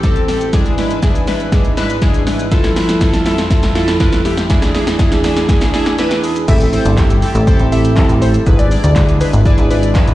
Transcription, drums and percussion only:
0.03 kick, snare, closed hi-hat, shaker
0.16 closed hi-hat, shaker
0.28 snare, open hi-hat, shaker
0.41 closed hi-hat, shaker
0.53 kick, snare, closed hi-hat, shaker
0.66 closed hi-hat, shaker
0.78 snare, open hi-hat, shaker
0.91 closed hi-hat, shaker
1.03 kick, snare, closed hi-hat, shaker
1.15 closed hi-hat, shaker
1.27 snare, open hi-hat, shaker
1.40 closed hi-hat, shaker
1.52 kick, snare, closed hi-hat, shaker
1.65 closed hi-hat, shaker
1.77 snare, open hi-hat, shaker
1.90 closed hi-hat, shaker
2.02 kick, snare, closed hi-hat, shaker
2.14 closed hi-hat, shaker
2.27 snare, open hi-hat, shaker
2.39 closed hi-hat, shaker
2.52 kick, snare, closed hi-hat, shaker
2.64 snare, closed hi-hat, shaker
2.76 snare, open hi-hat, shaker
2.89 snare, closed hi-hat, shaker
3.01 kick, snare, closed hi-hat, shaker
3.14 snare, closed hi-hat, shaker
3.26 snare, open hi-hat, shaker
3.38 snare, closed hi-hat, shaker
3.50 kick, snare, closed hi-hat, shaker
3.63 snare, closed hi-hat, shaker
3.75 snare, open hi-hat, shaker
3.88 snare, closed hi-hat, shaker
4.00 kick, snare, closed hi-hat, shaker
4.13 snare, closed hi-hat, shaker
4.25 snare, open hi-hat, shaker
4.37 snare, closed hi-hat, shaker
4.50 kick, snare, closed hi-hat, shaker
4.62 snare, closed hi-hat, shaker
4.75 snare, open hi-hat, shaker
4.87 snare, closed hi-hat, shaker
4.99 kick, snare, closed hi-hat, shaker
5.12 snare, closed hi-hat, shaker
5.24 snare, open hi-hat, shaker
5.37 snare, closed hi-hat, shaker
5.49 kick, snare, closed hi-hat, shaker
5.61 snare, closed hi-hat, shaker
5.74 snare, open hi-hat, shaker
5.86 snare, closed hi-hat, shaker
5.98 snare, closed hi-hat, shaker
6.11 snare, closed hi-hat, shaker
6.24 open hi-hat, shaker
6.36 closed hi-hat, shaker
6.48 kick, crash, shaker
6.61 closed hi-hat, shaker
6.73 open hi-hat, shaker
6.86 closed hi-hat, shaker
6.97 kick, snare, clap, shaker
7.10 closed hi-hat, shaker
7.22 open hi-hat, shaker
7.35 closed hi-hat, shaker
7.47 kick, shaker
7.59 closed hi-hat, shaker
7.72 open hi-hat, shaker
7.85 closed hi-hat, shaker
7.96 kick, snare, clap, shaker
8.09 closed hi-hat, shaker
8.22 open hi-hat, shaker
8.34 closed hi-hat, shaker
8.46 kick, shaker
8.59 closed hi-hat, shaker
8.71 open hi-hat, shaker
8.84 closed hi-hat, shaker
8.96 kick, snare, clap, shaker
9.09 closed hi-hat, shaker
9.21 open hi-hat, shaker
9.33 closed hi-hat, shaker
9.46 kick, shaker
9.58 closed hi-hat, shaker
9.71 open hi-hat, shaker
9.83 closed hi-hat, shaker
9.95 kick, snare, clap, shaker
10.08 closed hi-hat, shaker

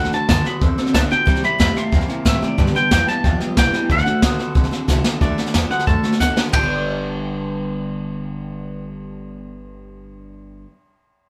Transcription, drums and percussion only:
0.04 snare
0.13 snare
0.29 kick, snare, hi-hat pedal
0.45 snare
0.61 kick, snare
0.78 snare
0.86 snare
0.94 kick, snare, hi-hat pedal
1.11 snare
1.27 kick, snare
1.35 snare
1.44 snare
1.60 kick, snare, hi-hat pedal
1.76 snare
1.92 kick, snare
2.01 snare
2.09 snare
2.26 kick, snare, hi-hat pedal
2.42 snare
2.58 kick, snare
2.67 snare
2.75 snare
2.91 kick, snare, hi-hat pedal
3.08 snare
3.24 kick, snare
3.40 snare
3.57 kick, snare, hi-hat pedal
3.73 snare
3.89 kick, snare
3.98 snare
4.06 snare
4.22 kick, snare, hi-hat pedal
4.39 snare
4.55 kick, snare
4.64 snare
4.72 snare
4.88 kick, snare, hi-hat pedal
5.04 snare
5.21 kick, snare
5.38 snare
5.46 snare
5.54 snare, hi-hat pedal
5.71 snare
5.79 snare
5.87 kick, snare
6.04 snare
6.12 snare
6.20 snare, hi-hat pedal
6.37 snare
6.53 kick, floor tom, ride bell

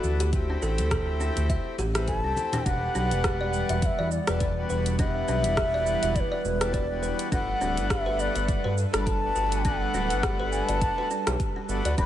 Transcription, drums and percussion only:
0.03 high conga, cabasa
0.20 closed hi-hat, cabasa
0.33 kick, closed hi-hat, cabasa
0.62 cabasa
0.78 closed hi-hat, muted conga, cabasa
0.91 kick, cross-stick, closed hi-hat, high conga, low conga, cabasa
1.20 cabasa
1.35 closed hi-hat, high conga, cabasa
1.49 kick, closed hi-hat, cabasa
1.78 muted conga, high conga, cabasa
1.95 cross-stick, closed hi-hat, muted conga, cabasa
2.08 kick, closed hi-hat, cabasa
2.36 muted conga, high conga, cabasa
2.52 closed hi-hat, high conga, low conga, cabasa
2.66 kick, closed hi-hat, cabasa
2.95 cabasa
3.11 closed hi-hat, cabasa
3.24 kick, cross-stick, closed hi-hat, cabasa
3.53 cabasa
3.69 closed hi-hat, cabasa
3.82 kick, closed hi-hat, cabasa
4.11 cabasa
4.27 cross-stick, closed hi-hat, cabasa
4.40 kick, closed hi-hat, cabasa
4.70 cabasa
4.86 closed hi-hat, cabasa
4.99 kick, closed hi-hat, cabasa
5.28 cabasa
5.44 closed hi-hat, cabasa
5.57 kick, cross-stick, closed hi-hat, cabasa
5.86 cabasa
6.03 closed hi-hat, cabasa
6.16 kick, closed hi-hat, cabasa
6.45 cabasa
6.61 cross-stick, closed hi-hat, cabasa
6.74 kick, closed hi-hat, cabasa
7.03 cabasa
7.19 closed hi-hat, cabasa
7.32 kick, closed hi-hat, cabasa
7.61 cabasa
7.77 closed hi-hat, cabasa
7.90 kick, cross-stick, closed hi-hat, cabasa
8.19 cabasa
8.36 closed hi-hat, cabasa
8.48 kick, closed hi-hat, cabasa
8.78 cabasa
8.94 cross-stick, closed hi-hat, cabasa
9.07 kick, closed hi-hat, cabasa
9.36 cabasa
9.52 closed hi-hat, cabasa
9.65 kick, closed hi-hat, cabasa
9.94 cabasa
10.10 closed hi-hat, cabasa
10.23 kick, cross-stick, closed hi-hat, cabasa
10.52 cabasa
10.69 closed hi-hat, cabasa
10.81 kick, closed hi-hat, cabasa
11.11 cabasa
11.27 cross-stick, closed hi-hat, cabasa
11.40 kick, closed hi-hat, cabasa
11.69 cabasa
11.85 closed hi-hat, cabasa
11.98 kick, closed hi-hat, cabasa

